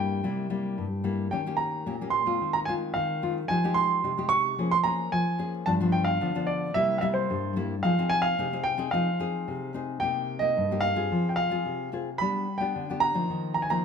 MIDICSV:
0, 0, Header, 1, 3, 480
1, 0, Start_track
1, 0, Key_signature, -4, "minor"
1, 0, Tempo, 543971
1, 1164, Time_signature, 4, 2, 24, 8
1, 8840, Key_signature, -3, "minor"
1, 12219, End_track
2, 0, Start_track
2, 0, Title_t, "Grand piano"
2, 0, Program_c, 0, 0
2, 0, Note_on_c, 0, 79, 88
2, 881, Note_off_c, 0, 79, 0
2, 1156, Note_on_c, 0, 79, 77
2, 1382, Note_on_c, 0, 82, 84
2, 1383, Note_off_c, 0, 79, 0
2, 1856, Note_on_c, 0, 84, 93
2, 1886, Note_off_c, 0, 82, 0
2, 2203, Note_off_c, 0, 84, 0
2, 2236, Note_on_c, 0, 82, 89
2, 2280, Note_off_c, 0, 82, 0
2, 2342, Note_on_c, 0, 80, 81
2, 2398, Note_off_c, 0, 80, 0
2, 2591, Note_on_c, 0, 77, 87
2, 2930, Note_off_c, 0, 77, 0
2, 3073, Note_on_c, 0, 80, 89
2, 3304, Note_on_c, 0, 84, 95
2, 3324, Note_off_c, 0, 80, 0
2, 3757, Note_off_c, 0, 84, 0
2, 3783, Note_on_c, 0, 85, 102
2, 4160, Note_on_c, 0, 84, 97
2, 4162, Note_off_c, 0, 85, 0
2, 4204, Note_off_c, 0, 84, 0
2, 4267, Note_on_c, 0, 82, 98
2, 4495, Note_off_c, 0, 82, 0
2, 4519, Note_on_c, 0, 80, 92
2, 4853, Note_off_c, 0, 80, 0
2, 4993, Note_on_c, 0, 81, 87
2, 5047, Note_off_c, 0, 81, 0
2, 5227, Note_on_c, 0, 79, 89
2, 5334, Note_on_c, 0, 77, 86
2, 5356, Note_off_c, 0, 79, 0
2, 5706, Note_on_c, 0, 74, 84
2, 5717, Note_off_c, 0, 77, 0
2, 5950, Note_on_c, 0, 76, 94
2, 5958, Note_off_c, 0, 74, 0
2, 6161, Note_on_c, 0, 77, 66
2, 6170, Note_off_c, 0, 76, 0
2, 6187, Note_on_c, 0, 76, 84
2, 6194, Note_off_c, 0, 77, 0
2, 6231, Note_off_c, 0, 76, 0
2, 6298, Note_on_c, 0, 72, 74
2, 6641, Note_off_c, 0, 72, 0
2, 6907, Note_on_c, 0, 77, 89
2, 7135, Note_off_c, 0, 77, 0
2, 7143, Note_on_c, 0, 80, 104
2, 7252, Note_on_c, 0, 77, 96
2, 7274, Note_off_c, 0, 80, 0
2, 7620, Note_on_c, 0, 79, 97
2, 7636, Note_off_c, 0, 77, 0
2, 7852, Note_off_c, 0, 79, 0
2, 7864, Note_on_c, 0, 77, 86
2, 8557, Note_off_c, 0, 77, 0
2, 8823, Note_on_c, 0, 79, 93
2, 9170, Note_on_c, 0, 75, 90
2, 9203, Note_off_c, 0, 79, 0
2, 9535, Note_on_c, 0, 77, 105
2, 9557, Note_off_c, 0, 75, 0
2, 9963, Note_on_c, 0, 79, 58
2, 9981, Note_off_c, 0, 77, 0
2, 10023, Note_on_c, 0, 77, 97
2, 10034, Note_off_c, 0, 79, 0
2, 10480, Note_off_c, 0, 77, 0
2, 10750, Note_on_c, 0, 83, 89
2, 11098, Note_on_c, 0, 79, 81
2, 11130, Note_off_c, 0, 83, 0
2, 11474, Note_on_c, 0, 82, 104
2, 11485, Note_off_c, 0, 79, 0
2, 11938, Note_off_c, 0, 82, 0
2, 11951, Note_on_c, 0, 82, 82
2, 12017, Note_off_c, 0, 82, 0
2, 12020, Note_on_c, 0, 80, 68
2, 12088, Note_off_c, 0, 80, 0
2, 12091, Note_on_c, 0, 82, 84
2, 12219, Note_off_c, 0, 82, 0
2, 12219, End_track
3, 0, Start_track
3, 0, Title_t, "Nylon-string guitar"
3, 0, Program_c, 1, 24
3, 0, Note_on_c, 1, 43, 74
3, 0, Note_on_c, 1, 55, 60
3, 0, Note_on_c, 1, 58, 57
3, 0, Note_on_c, 1, 64, 64
3, 175, Note_off_c, 1, 55, 0
3, 176, Note_off_c, 1, 58, 0
3, 178, Note_off_c, 1, 64, 0
3, 184, Note_off_c, 1, 43, 0
3, 208, Note_on_c, 1, 48, 63
3, 211, Note_on_c, 1, 55, 50
3, 214, Note_on_c, 1, 58, 54
3, 218, Note_on_c, 1, 64, 60
3, 409, Note_off_c, 1, 55, 0
3, 411, Note_off_c, 1, 58, 0
3, 413, Note_off_c, 1, 64, 0
3, 441, Note_on_c, 1, 55, 55
3, 445, Note_on_c, 1, 58, 58
3, 446, Note_on_c, 1, 64, 56
3, 662, Note_off_c, 1, 48, 0
3, 687, Note_on_c, 1, 43, 61
3, 752, Note_off_c, 1, 55, 0
3, 753, Note_off_c, 1, 58, 0
3, 754, Note_off_c, 1, 64, 0
3, 916, Note_on_c, 1, 55, 57
3, 923, Note_on_c, 1, 58, 53
3, 924, Note_on_c, 1, 64, 63
3, 1141, Note_off_c, 1, 43, 0
3, 1141, Note_off_c, 1, 55, 0
3, 1144, Note_off_c, 1, 58, 0
3, 1144, Note_off_c, 1, 64, 0
3, 1165, Note_on_c, 1, 51, 68
3, 1168, Note_on_c, 1, 58, 53
3, 1169, Note_on_c, 1, 61, 52
3, 1173, Note_on_c, 1, 67, 55
3, 1237, Note_off_c, 1, 58, 0
3, 1238, Note_off_c, 1, 61, 0
3, 1240, Note_off_c, 1, 67, 0
3, 1292, Note_on_c, 1, 58, 59
3, 1296, Note_on_c, 1, 61, 63
3, 1300, Note_on_c, 1, 67, 68
3, 1609, Note_off_c, 1, 58, 0
3, 1611, Note_off_c, 1, 61, 0
3, 1613, Note_off_c, 1, 67, 0
3, 1620, Note_off_c, 1, 51, 0
3, 1642, Note_on_c, 1, 46, 65
3, 1646, Note_on_c, 1, 61, 54
3, 1647, Note_on_c, 1, 58, 59
3, 1652, Note_on_c, 1, 67, 61
3, 1715, Note_off_c, 1, 58, 0
3, 1717, Note_off_c, 1, 61, 0
3, 1718, Note_off_c, 1, 67, 0
3, 1777, Note_on_c, 1, 58, 59
3, 1781, Note_on_c, 1, 61, 62
3, 1782, Note_on_c, 1, 67, 63
3, 1971, Note_off_c, 1, 58, 0
3, 1972, Note_off_c, 1, 61, 0
3, 1974, Note_off_c, 1, 67, 0
3, 1993, Note_on_c, 1, 56, 55
3, 1997, Note_on_c, 1, 60, 53
3, 2001, Note_on_c, 1, 65, 67
3, 2098, Note_off_c, 1, 46, 0
3, 2129, Note_on_c, 1, 51, 68
3, 2319, Note_off_c, 1, 56, 0
3, 2320, Note_off_c, 1, 60, 0
3, 2323, Note_off_c, 1, 65, 0
3, 2364, Note_on_c, 1, 56, 61
3, 2367, Note_on_c, 1, 60, 62
3, 2372, Note_on_c, 1, 65, 68
3, 2580, Note_off_c, 1, 51, 0
3, 2612, Note_on_c, 1, 51, 75
3, 2803, Note_off_c, 1, 56, 0
3, 2805, Note_off_c, 1, 60, 0
3, 2807, Note_off_c, 1, 65, 0
3, 2844, Note_on_c, 1, 56, 52
3, 2849, Note_on_c, 1, 60, 52
3, 2850, Note_on_c, 1, 65, 66
3, 2997, Note_off_c, 1, 56, 0
3, 2998, Note_off_c, 1, 60, 0
3, 3000, Note_off_c, 1, 65, 0
3, 3062, Note_off_c, 1, 51, 0
3, 3083, Note_on_c, 1, 53, 72
3, 3087, Note_on_c, 1, 56, 52
3, 3087, Note_on_c, 1, 63, 57
3, 3094, Note_on_c, 1, 67, 68
3, 3154, Note_off_c, 1, 56, 0
3, 3156, Note_off_c, 1, 63, 0
3, 3157, Note_off_c, 1, 67, 0
3, 3210, Note_on_c, 1, 56, 64
3, 3216, Note_on_c, 1, 63, 64
3, 3221, Note_on_c, 1, 67, 70
3, 3526, Note_off_c, 1, 56, 0
3, 3529, Note_off_c, 1, 63, 0
3, 3530, Note_off_c, 1, 67, 0
3, 3537, Note_off_c, 1, 53, 0
3, 3562, Note_on_c, 1, 48, 74
3, 3564, Note_on_c, 1, 56, 55
3, 3569, Note_on_c, 1, 63, 56
3, 3572, Note_on_c, 1, 67, 57
3, 3633, Note_off_c, 1, 56, 0
3, 3635, Note_off_c, 1, 63, 0
3, 3637, Note_off_c, 1, 67, 0
3, 3685, Note_on_c, 1, 56, 62
3, 3690, Note_on_c, 1, 63, 62
3, 3694, Note_on_c, 1, 67, 67
3, 4003, Note_off_c, 1, 56, 0
3, 4006, Note_off_c, 1, 63, 0
3, 4008, Note_off_c, 1, 67, 0
3, 4017, Note_off_c, 1, 48, 0
3, 4046, Note_on_c, 1, 53, 69
3, 4046, Note_on_c, 1, 58, 51
3, 4050, Note_on_c, 1, 61, 50
3, 4052, Note_on_c, 1, 68, 60
3, 4183, Note_off_c, 1, 58, 0
3, 4184, Note_off_c, 1, 61, 0
3, 4186, Note_off_c, 1, 68, 0
3, 4273, Note_on_c, 1, 58, 63
3, 4277, Note_on_c, 1, 61, 66
3, 4284, Note_on_c, 1, 68, 62
3, 4498, Note_off_c, 1, 53, 0
3, 4520, Note_on_c, 1, 53, 68
3, 4585, Note_off_c, 1, 58, 0
3, 4587, Note_off_c, 1, 61, 0
3, 4590, Note_off_c, 1, 68, 0
3, 4752, Note_on_c, 1, 58, 51
3, 4754, Note_on_c, 1, 61, 54
3, 4761, Note_on_c, 1, 68, 68
3, 4975, Note_off_c, 1, 53, 0
3, 4975, Note_off_c, 1, 58, 0
3, 4977, Note_off_c, 1, 61, 0
3, 4979, Note_off_c, 1, 68, 0
3, 4999, Note_on_c, 1, 43, 77
3, 5004, Note_on_c, 1, 53, 60
3, 5004, Note_on_c, 1, 59, 60
3, 5008, Note_on_c, 1, 62, 66
3, 5071, Note_off_c, 1, 53, 0
3, 5073, Note_off_c, 1, 59, 0
3, 5074, Note_off_c, 1, 62, 0
3, 5122, Note_on_c, 1, 53, 70
3, 5127, Note_on_c, 1, 59, 68
3, 5131, Note_on_c, 1, 62, 80
3, 5442, Note_off_c, 1, 53, 0
3, 5442, Note_off_c, 1, 59, 0
3, 5445, Note_off_c, 1, 62, 0
3, 5454, Note_off_c, 1, 43, 0
3, 5477, Note_on_c, 1, 50, 76
3, 5482, Note_on_c, 1, 53, 54
3, 5482, Note_on_c, 1, 59, 54
3, 5488, Note_on_c, 1, 62, 65
3, 5559, Note_off_c, 1, 53, 0
3, 5561, Note_off_c, 1, 59, 0
3, 5564, Note_off_c, 1, 62, 0
3, 5602, Note_on_c, 1, 53, 60
3, 5608, Note_on_c, 1, 59, 64
3, 5610, Note_on_c, 1, 62, 70
3, 5922, Note_off_c, 1, 53, 0
3, 5923, Note_off_c, 1, 59, 0
3, 5925, Note_off_c, 1, 62, 0
3, 5934, Note_off_c, 1, 50, 0
3, 5955, Note_on_c, 1, 48, 69
3, 5957, Note_on_c, 1, 55, 57
3, 5962, Note_on_c, 1, 58, 58
3, 5964, Note_on_c, 1, 64, 70
3, 6158, Note_off_c, 1, 55, 0
3, 6159, Note_off_c, 1, 58, 0
3, 6162, Note_off_c, 1, 64, 0
3, 6190, Note_on_c, 1, 55, 65
3, 6197, Note_on_c, 1, 58, 61
3, 6200, Note_on_c, 1, 64, 68
3, 6412, Note_off_c, 1, 48, 0
3, 6441, Note_on_c, 1, 43, 73
3, 6636, Note_off_c, 1, 55, 0
3, 6637, Note_off_c, 1, 58, 0
3, 6640, Note_off_c, 1, 64, 0
3, 6672, Note_on_c, 1, 55, 64
3, 6676, Note_on_c, 1, 58, 64
3, 6678, Note_on_c, 1, 64, 70
3, 6829, Note_off_c, 1, 55, 0
3, 6831, Note_off_c, 1, 58, 0
3, 6832, Note_off_c, 1, 64, 0
3, 6895, Note_off_c, 1, 43, 0
3, 6918, Note_on_c, 1, 53, 72
3, 6921, Note_on_c, 1, 60, 66
3, 6925, Note_on_c, 1, 68, 66
3, 6926, Note_on_c, 1, 63, 55
3, 6990, Note_off_c, 1, 60, 0
3, 6992, Note_off_c, 1, 63, 0
3, 6993, Note_off_c, 1, 68, 0
3, 7047, Note_on_c, 1, 60, 73
3, 7053, Note_on_c, 1, 63, 68
3, 7054, Note_on_c, 1, 68, 65
3, 7364, Note_off_c, 1, 60, 0
3, 7365, Note_off_c, 1, 63, 0
3, 7367, Note_off_c, 1, 68, 0
3, 7375, Note_off_c, 1, 53, 0
3, 7400, Note_on_c, 1, 48, 80
3, 7401, Note_on_c, 1, 60, 54
3, 7404, Note_on_c, 1, 63, 58
3, 7408, Note_on_c, 1, 68, 66
3, 7470, Note_off_c, 1, 60, 0
3, 7473, Note_off_c, 1, 63, 0
3, 7475, Note_off_c, 1, 68, 0
3, 7526, Note_on_c, 1, 60, 65
3, 7529, Note_on_c, 1, 63, 60
3, 7531, Note_on_c, 1, 68, 67
3, 7724, Note_off_c, 1, 60, 0
3, 7725, Note_off_c, 1, 63, 0
3, 7726, Note_off_c, 1, 68, 0
3, 7744, Note_on_c, 1, 60, 63
3, 7749, Note_on_c, 1, 63, 62
3, 7755, Note_on_c, 1, 68, 74
3, 7832, Note_off_c, 1, 60, 0
3, 7835, Note_off_c, 1, 63, 0
3, 7838, Note_off_c, 1, 68, 0
3, 7855, Note_off_c, 1, 48, 0
3, 7882, Note_on_c, 1, 53, 70
3, 7882, Note_on_c, 1, 60, 54
3, 7886, Note_on_c, 1, 63, 60
3, 7890, Note_on_c, 1, 68, 63
3, 8021, Note_off_c, 1, 60, 0
3, 8024, Note_off_c, 1, 63, 0
3, 8024, Note_off_c, 1, 68, 0
3, 8114, Note_on_c, 1, 60, 64
3, 8120, Note_on_c, 1, 63, 62
3, 8123, Note_on_c, 1, 68, 69
3, 8337, Note_off_c, 1, 53, 0
3, 8363, Note_on_c, 1, 48, 71
3, 8559, Note_off_c, 1, 60, 0
3, 8561, Note_off_c, 1, 63, 0
3, 8563, Note_off_c, 1, 68, 0
3, 8596, Note_on_c, 1, 60, 55
3, 8600, Note_on_c, 1, 63, 56
3, 8607, Note_on_c, 1, 68, 64
3, 8818, Note_off_c, 1, 48, 0
3, 8819, Note_off_c, 1, 60, 0
3, 8821, Note_off_c, 1, 63, 0
3, 8825, Note_off_c, 1, 68, 0
3, 8842, Note_on_c, 1, 48, 70
3, 8844, Note_on_c, 1, 58, 52
3, 8845, Note_on_c, 1, 63, 49
3, 8850, Note_on_c, 1, 67, 62
3, 9163, Note_off_c, 1, 58, 0
3, 9165, Note_off_c, 1, 63, 0
3, 9166, Note_off_c, 1, 67, 0
3, 9185, Note_on_c, 1, 58, 57
3, 9189, Note_on_c, 1, 63, 53
3, 9196, Note_on_c, 1, 67, 49
3, 9298, Note_off_c, 1, 48, 0
3, 9326, Note_on_c, 1, 43, 71
3, 9395, Note_off_c, 1, 58, 0
3, 9396, Note_off_c, 1, 63, 0
3, 9400, Note_off_c, 1, 67, 0
3, 9452, Note_on_c, 1, 58, 55
3, 9457, Note_on_c, 1, 63, 65
3, 9461, Note_on_c, 1, 67, 64
3, 9649, Note_off_c, 1, 58, 0
3, 9651, Note_off_c, 1, 63, 0
3, 9653, Note_off_c, 1, 67, 0
3, 9668, Note_on_c, 1, 60, 57
3, 9674, Note_on_c, 1, 65, 57
3, 9675, Note_on_c, 1, 68, 69
3, 9781, Note_off_c, 1, 43, 0
3, 9809, Note_on_c, 1, 53, 65
3, 10118, Note_off_c, 1, 60, 0
3, 10120, Note_off_c, 1, 65, 0
3, 10121, Note_off_c, 1, 68, 0
3, 10153, Note_on_c, 1, 60, 56
3, 10158, Note_on_c, 1, 65, 70
3, 10162, Note_on_c, 1, 68, 69
3, 10263, Note_off_c, 1, 53, 0
3, 10285, Note_on_c, 1, 48, 69
3, 10481, Note_off_c, 1, 60, 0
3, 10483, Note_off_c, 1, 65, 0
3, 10485, Note_off_c, 1, 68, 0
3, 10523, Note_on_c, 1, 60, 56
3, 10528, Note_on_c, 1, 65, 52
3, 10531, Note_on_c, 1, 68, 60
3, 10666, Note_off_c, 1, 60, 0
3, 10667, Note_off_c, 1, 65, 0
3, 10669, Note_off_c, 1, 68, 0
3, 10742, Note_off_c, 1, 48, 0
3, 10773, Note_on_c, 1, 55, 63
3, 10778, Note_on_c, 1, 59, 58
3, 10778, Note_on_c, 1, 62, 58
3, 10782, Note_on_c, 1, 67, 64
3, 10997, Note_off_c, 1, 59, 0
3, 10997, Note_off_c, 1, 62, 0
3, 11000, Note_off_c, 1, 67, 0
3, 11122, Note_on_c, 1, 59, 58
3, 11125, Note_on_c, 1, 62, 52
3, 11130, Note_on_c, 1, 67, 59
3, 11227, Note_off_c, 1, 55, 0
3, 11257, Note_on_c, 1, 50, 64
3, 11327, Note_off_c, 1, 59, 0
3, 11327, Note_off_c, 1, 62, 0
3, 11330, Note_off_c, 1, 67, 0
3, 11381, Note_on_c, 1, 59, 57
3, 11386, Note_on_c, 1, 62, 54
3, 11390, Note_on_c, 1, 67, 64
3, 11576, Note_off_c, 1, 59, 0
3, 11579, Note_off_c, 1, 62, 0
3, 11581, Note_off_c, 1, 67, 0
3, 11598, Note_on_c, 1, 53, 64
3, 11601, Note_on_c, 1, 58, 56
3, 11605, Note_on_c, 1, 63, 65
3, 11710, Note_off_c, 1, 50, 0
3, 11735, Note_on_c, 1, 51, 65
3, 12046, Note_off_c, 1, 53, 0
3, 12048, Note_off_c, 1, 58, 0
3, 12049, Note_off_c, 1, 63, 0
3, 12085, Note_on_c, 1, 53, 66
3, 12089, Note_on_c, 1, 58, 63
3, 12095, Note_on_c, 1, 63, 63
3, 12190, Note_off_c, 1, 51, 0
3, 12219, Note_off_c, 1, 53, 0
3, 12219, Note_off_c, 1, 58, 0
3, 12219, Note_off_c, 1, 63, 0
3, 12219, End_track
0, 0, End_of_file